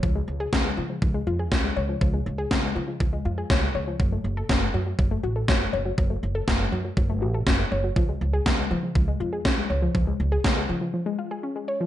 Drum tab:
SD |--o---o-|--o---o-|--o---o-|--o---o-|
BD |o-o-o-o-|o-o-o-o-|o-o-o-o-|o-o-o-o-|

SD |--o---o-|--o-----|
BD |o-o-o-o-|o-o-----|